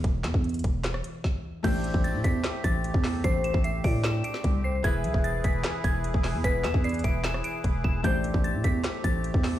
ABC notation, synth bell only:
X:1
M:4/4
L:1/8
Q:1/4=150
K:Am
V:1 name="Synth bell"
z8 | g'2 a' b'2 a'3 | c'' e'' c'' d'' e'' d''2 c'' | ^g'2 a' b'2 g'3 |
b' e'' c'' d'' e'' d''2 e'' | g'2 a' b'2 a'3 |]